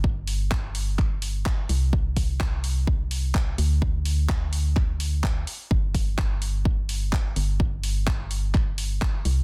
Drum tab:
HH |-o-o-o-o|-o-o-o-o|-o-o-o-o|-o-o-o-o|
CP |--x-x-x-|--x---x-|--x-x-x-|--x---x-|
BD |o-o-o-o-|ooo-o-o-|o-o-o-o-|ooo-o-o-|

HH |-o-o-o-o|
CP |--x-x-x-|
BD |o-o-o-o-|